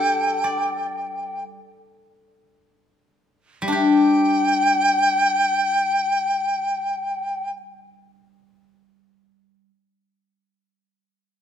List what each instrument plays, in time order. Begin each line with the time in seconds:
Already playing: guzheng G3 D4 G4 A4, dizi G5
0.44 guzheng D5
3.62 guzheng G3
3.68 guzheng D4
3.72 guzheng G4, dizi G5